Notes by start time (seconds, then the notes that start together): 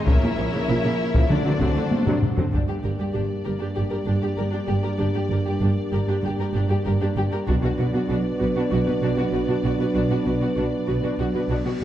0.06 A#1 A#2 C#3 F3 A#3 C#4 E4 A#4 C#5 E5, taiko
0.22 A#2 C#3 A#3
0.38 A#1 A#2 F3 C#4
0.52 A#2 C#3 A#3
0.68 A#1 A#2 C#3 F3
0.83 A#2 C#3 A#3
1.14 A#2 C#3 F3, taiko
1.28 D2 D3 F#3 A3 C4 D4 F#4 A4 C5 D5
1.45 D3 F#3 C4
1.60 D2 C3 D3 F#3, taiko
1.75 D3 A3
1.91 taiko high
2.06 C3 D3 F#3, taiko low-mid
2.22 taiko low-mid
2.37 D3 F#3 C4, taiko low
2.52 G1 G2 G3 A#3 D4 G4 D5, taiko
2.68 G2 G4
2.83 G1 G2 G4 A#4
2.98 G2 G4
3.13 G1 G2 D4 G4
3.44 G1 G2 G4 A#4
3.59 G2 D4 G4
3.76 G1 G2 G4
3.90 G2 G4 A#4
4.06 G1 G2 D4 G4
4.22 G2 G4
4.37 G1 G2 G4 A#4
4.52 G2 D4 G4
4.67 G1 G2 G4
4.83 G2 G4 A#4
4.99 G1 G2 D4 G4
5.15 G2 G4
5.30 G1 G2 G4 A#4
5.46 G2 G4
5.61 G1 G2 D4 G4
5.92 G1 G2 G4 A#4
6.07 G2 D4 G4
6.23 G1 G2 G4
6.38 G2 G4 A#4
6.54 G1 G2 D4 G4
6.68 G2 G4
6.84 G1 G2 G4 A#4
7.00 G2 D4 G4
7.16 G1 G2 G4
7.31 G2 G4 A#4
7.46 B1 B2 F#3 B3 D4 F#4 B4 D5, taiko
7.62 B2 F#4
7.78 B1 B2 F#4 B4
7.93 B2 F#4
8.08 B1 B2 D4 F#4
8.40 B1 B2 F#4 B4
8.55 B2 D4 F#4
8.70 B1 B2 F#4
8.87 B2 F#4 B4
9.01 B1 B2 D4 F#4
9.17 B2 F#4
9.32 B1 B2 F#4 B4
9.48 B2 D4 F#4
9.63 B1 B2 F#4
9.78 B2 F#4 B4
9.95 B1 B2 D4 F#4, reverse cymbal
10.10 B2 F#4
10.25 B1 B2 F#4 B4
10.41 B2 F#4
10.56 B1 B2 D4 F#4
10.87 B1 B2 F#4 B4
11.03 B2 D4 F#4
11.19 B1 B2 F#4
11.34 B2 F#4 B4
11.49 B1 B2 D4 F#4
11.65 B2 F#4
11.79 B1 B2 F#4